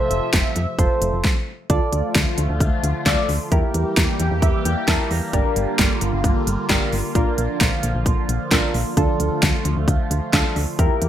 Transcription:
0.00 1.23 C3 medium
0.00 1.23 F3 medium
0.00 1.21 A3 medium
0.00 0.38 F4 medium
0.00 0.38 A4 medium
0.00 0.38 C5 loud
0.00 1.23 E5 medium
0.11 0.21 F1 loud
0.11 closed hi-hat medium
0.33 0.44 F1 loud
0.33 kick loud
0.33 snare loud
0.33 closed hi-hat medium
0.56 0.66 F2 loud
0.56 closed hi-hat medium
0.79 0.89 F1 loud
0.79 1.24 F4 medium
0.79 1.24 A4 medium
0.79 1.24 C5 loud
0.79 kick loud
0.79 closed hi-hat medium
1.02 1.12 F1 loud
1.02 closed hi-hat medium
1.13 1.23 F1 medium
1.24 kick loud
1.24 snare medium
1.70 1.80 D2 loud
1.70 3.50 D3 medium
1.70 3.50 F3 medium
1.70 3.50 A3 medium
1.70 3.50 F4 medium
1.70 2.16 F4 medium
1.70 2.16 A4 medium
1.70 2.16 D5 medium
1.70 kick loud
1.70 closed hi-hat medium
1.93 2.03 D2 loud
1.93 closed hi-hat medium
2.15 2.25 D2 loud
2.15 kick loud
2.15 snare loud
2.15 closed hi-hat medium
2.38 2.48 D2 loud
2.38 closed hi-hat medium
2.49 2.59 D2 loud
2.60 2.71 D2 loud
2.60 kick loud
2.60 closed hi-hat medium
2.84 2.94 D2 loud
2.84 closed hi-hat medium
3.06 3.16 D2 loud
3.06 3.29 F4 medium
3.06 3.29 A4 medium
3.06 3.29 D5 loud
3.06 kick loud
3.06 snare loud
3.06 clap medium
3.06 closed hi-hat medium
3.29 3.39 D2 loud
3.29 open hi-hat medium
3.52 3.62 E2 loud
3.52 5.32 E3 medium
3.52 7.12 G3 medium
3.52 8.93 A#3 medium
3.52 3.97 E4 medium
3.52 3.97 G4 medium
3.52 5.32 G4 medium
3.52 3.98 A#4 loud
3.52 kick loud
3.52 closed hi-hat medium
3.74 3.85 E2 loud
3.74 closed hi-hat medium
3.97 4.07 E2 loud
3.97 kick loud
3.97 snare loud
3.97 closed hi-hat medium
4.20 4.30 E2 loud
4.20 4.41 G5 medium
4.20 closed hi-hat medium
4.31 4.41 E2 loud
4.42 4.53 E2 loud
4.42 4.64 E5 medium
4.42 kick loud
4.42 closed hi-hat medium
4.65 4.75 E2 loud
4.65 4.86 G5 medium
4.65 closed hi-hat medium
4.88 4.98 E2 loud
4.88 5.11 E4 medium
4.88 5.11 G4 medium
4.88 5.11 A#4 loud
4.88 5.09 A5 medium
4.88 kick loud
4.88 snare loud
4.88 clap medium
4.88 closed hi-hat medium
5.11 5.21 E2 loud
5.11 5.32 A#5 medium
5.11 open hi-hat medium
5.33 5.44 G1 loud
5.33 7.13 D3 medium
5.33 5.79 D4 medium
5.33 10.75 F4 medium
5.33 5.79 G4 medium
5.33 5.79 A#4 loud
5.33 kick loud
5.33 closed hi-hat medium
5.56 5.66 G1 loud
5.56 closed hi-hat medium
5.79 5.89 G1 loud
5.79 kick loud
5.79 snare loud
5.79 closed hi-hat medium
6.01 6.12 G1 loud
6.01 closed hi-hat medium
6.13 6.23 G1 loud
6.24 6.34 G1 loud
6.24 kick loud
6.24 closed hi-hat medium
6.47 6.57 G1 loud
6.47 closed hi-hat medium
6.70 6.80 G1 loud
6.70 6.93 D4 medium
6.70 6.93 G4 medium
6.70 6.93 A#4 loud
6.70 kick loud
6.70 snare loud
6.70 clap medium
6.70 closed hi-hat medium
6.92 7.03 G1 loud
6.92 open hi-hat medium
7.15 7.25 A#1 loud
7.15 10.75 D3 medium
7.15 8.95 F3 medium
7.15 7.61 D4 medium
7.15 7.61 F4 medium
7.15 7.61 A#4 loud
7.15 kick loud
7.15 closed hi-hat medium
7.38 7.48 A#1 loud
7.38 closed hi-hat medium
7.61 7.71 A#1 loud
7.61 kick loud
7.61 snare loud
7.61 closed hi-hat medium
7.83 7.94 A#1 loud
7.83 closed hi-hat medium
7.95 8.05 A#1 loud
8.06 8.16 A#1 loud
8.06 kick loud
8.06 closed hi-hat medium
8.29 8.39 A#1 loud
8.29 closed hi-hat medium
8.52 8.62 A#1 loud
8.52 8.75 D4 medium
8.52 8.75 F4 medium
8.52 8.75 A#4 medium
8.52 kick loud
8.52 snare loud
8.52 clap medium
8.52 closed hi-hat medium
8.74 8.85 A#1 loud
8.74 open hi-hat medium
8.97 9.07 D2 loud
8.97 10.77 F3 medium
8.97 10.77 A3 medium
8.97 9.43 D4 medium
8.97 9.43 F4 medium
8.97 9.43 A4 loud
8.97 kick loud
8.97 closed hi-hat medium
9.20 9.30 D2 loud
9.20 closed hi-hat medium
9.42 9.53 D2 loud
9.42 kick loud
9.42 snare loud
9.42 closed hi-hat medium
9.65 9.75 D2 loud
9.65 closed hi-hat medium
9.77 9.87 D2 loud
9.88 9.98 D2 loud
9.88 kick loud
9.88 closed hi-hat medium
10.11 10.21 D2 loud
10.11 closed hi-hat medium
10.33 10.43 D2 loud
10.33 10.56 D4 medium
10.33 10.56 F4 medium
10.33 10.56 A4 loud
10.33 kick loud
10.33 snare loud
10.33 clap medium
10.33 closed hi-hat medium
10.56 10.66 D2 loud
10.56 open hi-hat medium
10.79 10.89 E2 loud
10.79 11.09 E3 medium
10.79 11.09 G3 medium
10.79 11.09 A#3 medium
10.79 11.09 E4 medium
10.79 11.09 G4 medium
10.79 11.09 A#4 loud
10.79 kick loud
10.79 closed hi-hat medium
11.02 11.09 E2 loud
11.02 closed hi-hat medium

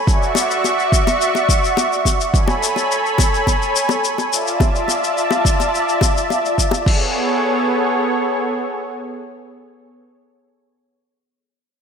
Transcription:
0.07 2.32 F#4 medium
0.07 2.32 D5 medium
0.07 2.32 E5 medium
0.07 2.32 C#6 medium
0.07 kick loud
0.07 shaker soft
0.23 shaker soft
0.35 high bongo medium
0.35 shaker medium
0.51 shaker soft
0.64 high bongo soft
0.64 shaker soft
0.79 shaker soft
0.92 kick medium
0.92 shaker medium
1.07 high bongo medium
1.07 shaker soft
1.21 shaker soft
1.35 high bongo soft
1.35 shaker soft
1.49 kick medium
1.49 shaker medium
1.64 shaker soft
1.77 high bongo medium
1.77 shaker soft
1.93 shaker soft
2.05 kick medium
2.05 high bongo soft
2.05 shaker medium
2.21 shaker soft
2.34 4.30 A4 medium
2.34 4.30 C#5 medium
2.34 4.30 G#5 medium
2.34 4.30 B5 medium
2.34 kick loud
2.34 shaker soft
2.48 high bongo medium
2.48 shaker soft
2.63 shaker medium
2.76 high bongo soft
2.76 shaker soft
2.92 shaker soft
3.06 shaker soft
3.18 kick medium
3.18 high bongo medium
3.18 shaker medium
3.34 shaker soft
3.47 kick medium
3.47 high bongo soft
3.47 shaker soft
3.62 shaker soft
3.76 shaker medium
3.89 high bongo medium
3.89 shaker soft
4.04 shaker soft
4.18 high bongo soft
4.18 shaker soft
4.32 6.84 F4 medium
4.32 6.84 D5 medium
4.32 6.84 E5 medium
4.32 6.84 A5 medium
4.32 shaker medium
4.47 shaker soft
4.60 kick loud
4.60 high bongo medium
4.60 shaker soft
4.75 shaker soft
4.88 high bongo soft
4.88 shaker medium
5.04 shaker soft
5.18 shaker soft
5.31 high bongo medium
5.31 shaker soft
5.45 kick medium
5.45 shaker medium
5.60 high bongo soft
5.60 shaker soft
5.75 shaker soft
5.89 shaker soft
6.01 kick medium
6.01 high bongo medium
6.01 shaker medium
6.17 shaker soft
6.30 high bongo soft
6.30 shaker soft
6.45 shaker soft
6.58 kick medium
6.58 shaker medium
6.71 high bongo medium
6.71 shaker soft
6.86 9.89 B3 medium
6.86 9.89 G#4 medium
6.86 9.89 A4 medium
6.86 9.89 C#5 medium
6.86 kick loud
6.86 crash medium

